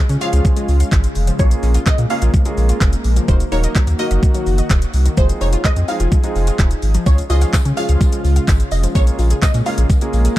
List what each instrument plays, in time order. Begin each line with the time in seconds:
Already playing: analog synth pad C#3 G#3 F4, synth pluck D#5
0.09 sub bass C#3, synth arpeggio sound C#4, closed hi-hat, shaker
0.21 grand piano F3 G#3 C#4 F4 G#4, synth arpeggio sound F4, synth pluck F5, open hi-hat, shaker
0.33 sub bass C#2, synth arpeggio sound F5, closed hi-hat, shaker
0.45 synth arpeggio sound F3, kick, shaker
0.57 synth arpeggio sound G#3, closed hi-hat, shaker
0.69 sub bass C#2, open hi-hat, shaker
0.80 synth arpeggio sound F5, closed hi-hat, shaker
0.92 sub bass G#1, kick, clap, shaker
1.04 closed hi-hat, shaker
1.15 sub bass F1, open hi-hat, shaker
1.27 synth arpeggio sound F3, closed hi-hat, shaker
1.39 sub bass A#1, synth arpeggio sound F3, grand piano G#3 A#3 C#4 F4 G#4, analog synth pad A#3, synth pluck C#5, kick, shaker
1.51 closed hi-hat, shaker
1.63 sub bass A#1, synth arpeggio sound C#4, open hi-hat, shaker
1.74 synth arpeggio sound F4, closed hi-hat, shaker
1.86 sub bass A#2, synth arpeggio sound G#3, synth pluck D#5, kick, clap, shaker
1.98 sub bass A#2, synth arpeggio sound A#3, closed hi-hat, shaker
2.10 grand piano G#3 A#3 C#4 F4 G#4, synth arpeggio sound C#4, synth pluck F5, open hi-hat, shaker
2.22 sub bass A#1, synth arpeggio sound F4, closed hi-hat, shaker
2.34 synth arpeggio sound F3, kick, shaker
2.45 synth arpeggio sound G#3, grand piano G#3 A#3 C#4 F4 G#4, closed hi-hat, shaker
2.57 sub bass A#1, open hi-hat, shaker
2.69 synth arpeggio sound F4, closed hi-hat, shaker
2.81 sub bass F1, kick, clap, shaker
2.93 closed hi-hat, shaker
3.04 sub bass A#1, open hi-hat, shaker
3.16 synth arpeggio sound F3, closed hi-hat, shaker
3.28 sub bass D#1, synth arpeggio sound D#3, analog synth pad D#3 F#4, grand piano F#3 A#3 D#4 F#4 A#4, synth pluck C5, kick, shaker
3.40 closed hi-hat, shaker
3.52 sub bass D#1, grand piano F#3 A#3 D#4 F#4 A#4, synth arpeggio sound D#4, synth pluck C#5, open hi-hat, shaker
3.64 synth arpeggio sound D#5, closed hi-hat, shaker
3.75 sub bass D#2, synth arpeggio sound F#3, kick, clap, shaker
3.87 sub bass D#2, synth arpeggio sound A#3, closed hi-hat, shaker
3.99 grand piano F#3 A#3 D#4 F#4 A#4, synth arpeggio sound D#4, synth pluck D#5, open hi-hat, shaker
4.11 sub bass F#1, synth arpeggio sound D#5, closed hi-hat, shaker
4.23 synth arpeggio sound D#3, kick, shaker
4.35 synth arpeggio sound F#3, closed hi-hat, shaker
4.46 sub bass F#1, open hi-hat, shaker
4.58 synth arpeggio sound D#5, closed hi-hat, shaker
4.70 sub bass D#1, kick, clap, shaker
4.82 closed hi-hat, shaker
4.94 sub bass C2, open hi-hat, shaker
5.06 synth arpeggio sound D#3, closed hi-hat, shaker
5.17 sub bass F1, synth arpeggio sound F3, analog synth pad F3 D#4 G#4, grand piano G#3 C4 D#4 F4 G#4, synth pluck C5, kick, shaker
5.29 closed hi-hat, shaker
5.41 sub bass F1, synth arpeggio sound D#4, synth pluck C#5, open hi-hat, shaker
5.53 synth arpeggio sound F4, closed hi-hat, shaker
5.64 sub bass F2, synth arpeggio sound G#3, synth pluck D#5, kick, clap, shaker
5.76 sub bass F2, synth arpeggio sound C4, closed hi-hat, shaker
5.88 grand piano G#3 C4 D#4 F4 G#4, synth arpeggio sound D#4, synth pluck F5, open hi-hat, shaker
6.00 sub bass F1, synth arpeggio sound F4, closed hi-hat, shaker
6.12 synth arpeggio sound F3, kick, shaker
6.23 grand piano G#3 C4 D#4 F4 G#4, synth arpeggio sound G#3, closed hi-hat, shaker
6.35 sub bass F1, open hi-hat, shaker
6.47 synth arpeggio sound F4, closed hi-hat, shaker
6.59 sub bass D#1, kick, clap, shaker
6.71 closed hi-hat, shaker
6.82 sub bass G#1, open hi-hat, shaker
6.94 synth arpeggio sound F3, closed hi-hat, shaker
7.06 sub bass C#2, analog synth pad C#3 G#3 F4, grand piano F3 G#3 C#4 F4 G#4, synth arpeggio sound F3, synth pluck C#5, kick, tambourine, shaker
7.18 closed hi-hat, shaker
7.30 sub bass C#2, grand piano F3 G#3 C#4 F4 G#4, synth arpeggio sound F4, synth pluck D#5, open hi-hat, tambourine, shaker
7.41 synth arpeggio sound F5, closed hi-hat, tambourine, shaker
7.53 sub bass C#3, synth arpeggio sound G#3, kick, clap, tambourine, shaker
7.65 sub bass C#3, synth arpeggio sound C#4, closed hi-hat, shaker
7.77 grand piano F3 G#3 C#4 F4 G#4, synth arpeggio sound F4, synth pluck F5, open hi-hat, tambourine, shaker
7.89 sub bass C#2, synth arpeggio sound F5, closed hi-hat, shaker
8.01 synth arpeggio sound F3, kick, tambourine, shaker
8.12 synth arpeggio sound G#3, closed hi-hat, shaker
8.24 sub bass C#2, open hi-hat, tambourine, shaker
8.36 synth arpeggio sound F5, closed hi-hat, shaker
8.48 sub bass G#1, kick, clap, tambourine, shaker
8.60 closed hi-hat, shaker
8.71 sub bass F1, synth pluck D#5, open hi-hat, tambourine, shaker
8.83 synth arpeggio sound F3, closed hi-hat, tambourine, shaker
8.95 sub bass A#1, grand piano G#3 A#3 C#4 F4 G#4, synth arpeggio sound G#3, analog synth pad G#3 A#3, synth pluck C#5, kick, tambourine, shaker
9.07 closed hi-hat, shaker
9.19 sub bass A#1, synth arpeggio sound F4, open hi-hat, tambourine, shaker
9.30 synth arpeggio sound G#4, closed hi-hat, shaker
9.42 sub bass A#2, synth arpeggio sound A#3, synth pluck D#5, kick, clap, tambourine, shaker
9.54 sub bass A#2, synth arpeggio sound C#4, closed hi-hat, tambourine, shaker
9.66 grand piano G#3 A#3 C#4 F4 G#4, synth arpeggio sound F4, synth pluck F5, open hi-hat, tambourine, shaker
9.78 sub bass A#1, synth arpeggio sound G#4, closed hi-hat, shaker
9.90 synth arpeggio sound G#3, kick, tambourine, shaker
10.01 grand piano G#3 A#3 C#4 F4 G#4, synth arpeggio sound A#3, closed hi-hat, shaker
10.13 sub bass A#1, open hi-hat, tambourine, shaker
10.25 synth arpeggio sound G#4, closed hi-hat, tambourine, shaker